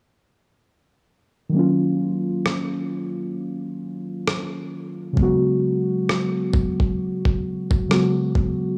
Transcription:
1.49 synth keys D#3 F#3
1.54 synth keys A#3 C#4
1.59 synth keys F4
2.46 cross-stick
4.28 cross-stick
5.13 synth keys C#3 F#3
5.17 synth keys G#3 B3, kick
5.22 synth keys F#4
6.09 cross-stick
6.54 kick
6.80 kick
7.25 kick
7.71 kick
7.88 synth keys C#3 F#3 G#3 B3, cross-stick
7.93 synth keys F#4
8.35 kick

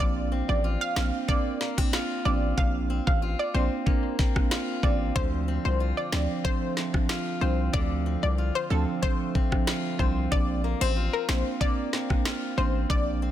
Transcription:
Already playing: steel-string acoustic guitar D3 C4 F4
0.00 808-style bass A#1, marimba A#3 C4 D4, synth pluck D5, kick
0.32 steel-string acoustic guitar C4
0.49 808-style bass A1, synth pluck D5
0.64 steel-string acoustic guitar F4
0.81 synth pluck F5
0.96 808-style bass A#1, marimba A#3 C4 D4, steel-string acoustic guitar C4, synth pluck F5, finger snap, snare
1.28 marimba A#3 C4 D4, steel-string acoustic guitar A#3, synth pluck D5, kick
1.61 steel-string acoustic guitar A#3, snare
1.78 marimba A#3 C4 D4, steel-string acoustic guitar C4, kick, cross-stick
1.93 steel-string acoustic guitar F4, finger snap, snare
2.25 808-style bass A1, marimba A#3 C4 D4, steel-string acoustic guitar C4, synth pluck D5
2.57 808-style bass A#1, marimba A#3 C4 D4, synth pluck F5, kick
2.90 steel-string acoustic guitar C4
3.07 808-style bass A1, synth pluck F5, kick
3.22 steel-string acoustic guitar F4
3.39 synth pluck D5
3.54 808-style bass A#1, marimba A#3 C4 D4, steel-string acoustic guitar C4, synth pluck C5
3.86 marimba A#3 C4 D4, steel-string acoustic guitar A#3, kick
4.19 steel-string acoustic guitar C4, kick, snare
4.36 marimba A#3 C4 D4, kick, cross-stick
4.51 steel-string acoustic guitar F4, finger snap, snare
4.83 808-style bass A1, marimba A#3 C4 D4, steel-string acoustic guitar C4, synth pluck D5, kick
5.15 808-style bass D2, steel-string acoustic guitar D3, marimba F3 C4 D4, synth pluck C5, kick
5.48 steel-string acoustic guitar C4
5.65 808-style bass C2, synth pluck C5
5.80 steel-string acoustic guitar F4
5.97 synth pluck D5
6.12 808-style bass D2, marimba F3 C4 D4, steel-string acoustic guitar C4, synth pluck D5, finger snap, snare
6.44 marimba F3 C4 D4, steel-string acoustic guitar A3, synth pluck C5, kick
6.77 steel-string acoustic guitar C4, snare
6.94 marimba F3 C4 D4, kick, cross-stick
7.09 steel-string acoustic guitar F4, finger snap, snare
7.41 808-style bass C2, marimba F3 C4 D4, steel-string acoustic guitar C4, synth pluck C5
7.73 808-style bass D2, steel-string acoustic guitar D3, marimba F3 C4 D4, synth pluck D5, kick
8.06 steel-string acoustic guitar C4
8.23 808-style bass C2, synth pluck D5
8.38 steel-string acoustic guitar F4
8.55 synth pluck C5
8.70 808-style bass D2, marimba F3 C4 D4, steel-string acoustic guitar C4, synth pluck A4
9.02 marimba F3 C4 D4, steel-string acoustic guitar A3, synth pluck C5, kick
9.35 steel-string acoustic guitar C4, kick
9.52 marimba F3 C4 D4, kick, cross-stick
9.67 steel-string acoustic guitar F4, finger snap, snare
9.99 808-style bass C2, marimba F3 C4 D4, steel-string acoustic guitar C4, synth pluck C5, kick
10.31 808-style bass A#1, marimba A#3 C4 D4, synth pluck D5, kick
10.64 steel-string acoustic guitar A#3
10.81 808-style bass A1, steel-string acoustic guitar C4, synth pluck C5
10.96 steel-string acoustic guitar F4
11.13 synth pluck A#4
11.28 808-style bass A#1, marimba A#3 C4 D4, steel-string acoustic guitar C4, synth pluck C5, finger snap, snare
11.61 marimba A#3 C4 D4, steel-string acoustic guitar A#3, synth pluck D5, kick
11.93 steel-string acoustic guitar C4, snare
12.10 marimba A#3 C4 D4, kick, cross-stick
12.25 steel-string acoustic guitar F4, finger snap, snare
12.57 808-style bass A1, marimba A#3 C4 D4, steel-string acoustic guitar C4, synth pluck C5
12.90 808-style bass A#1, marimba A#3 C4 D4, synth pluck D5, kick
13.22 steel-string acoustic guitar C4

